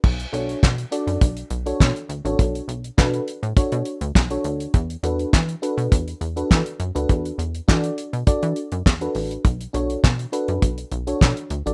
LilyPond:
<<
  \new Staff \with { instrumentName = "FM electric piano" } { \time 4/4 \key b \minor \tempo 4 = 102 r8 <d' fis' a' cis''>8 r8 <d' fis' a' d''>8 r8. <d' fis' a' cis''>8 r8 <d' fis' a' cis''>16~ | <d' fis' a' cis''>16 r8. <d' fis' a' b'>8 r8 <d' fis' a' cis''>8 r8. <d' fis' a' cis''>8 r16 | r8 <d' fis' a' b'>8 r8 <d' fis' a' b'>8 r8. <d' fis' a' b'>8 r8 <d' fis' a' b'>16~ | <d' fis' a' b'>16 r8. <d' fis' a' d''>8 r8 <d' fis' a' d''>8 r8. <d' fis' a' b'>8 r16 |
r8 <d' fis' a' cis''>8 r8 <d' fis' a' b'>8 r8. <d' fis' a' cis''>8 r8 <d' fis' a' d''>16 | }
  \new Staff \with { instrumentName = "Analog synth bass" } { \clef bass \time 4/4 \key b \minor b,,8 b,,8 b,8 r16 fis,16 b,,8 b,,8 b,16 r16 d,16 a,,16 | b,,8 b,,8 b,8 r16 a,16 b,16 b,16 r16 d,16 b,,8 d,8 | e,8 e,8 e8 r16 b,16 e,8 e,8 e16 r16 fis,16 d,16 | e,8 e,8 e8 r16 b,16 e16 e16 r16 fis,16 e,8 a,,8 |
b,,8 b,,8 b,8 r16 fis,16 b,,8 b,,8 b,16 r16 d,16 a,,16 | }
  \new DrumStaff \with { instrumentName = "Drums" } \drummode { \time 4/4 <cymc bd>16 hh16 hh16 hh16 <hc bd sn>16 hh16 hh16 hh16 <hh bd>16 hh16 hh16 hh16 <hc bd sn>16 hh16 hh16 hh16 | <hh bd>16 hh16 hh16 hh16 <hc bd sn>16 hh16 hh16 hh16 <hh bd>16 hh16 hh16 hh16 <hc bd sn>16 hh16 hh16 hh16 | <hh bd>16 hh16 hh16 hh16 <hc bd sn>16 hh16 hh16 hh16 <hh bd>16 hh16 hh16 hh16 <hc bd sn>16 hh16 hh16 hh16 | <hh bd>16 hh16 hh16 hh16 <hc bd sn>16 hh16 hh16 hh16 <hh bd>16 hh16 hh16 hh16 <hc bd sn>16 hh16 hho16 hh16 |
<hh bd>16 hh16 hh16 hh16 <hc bd sn>16 hh16 hh16 hh16 <hh bd>16 hh16 hh16 hh16 <hc bd sn>16 hh16 hh16 hh16 | }
>>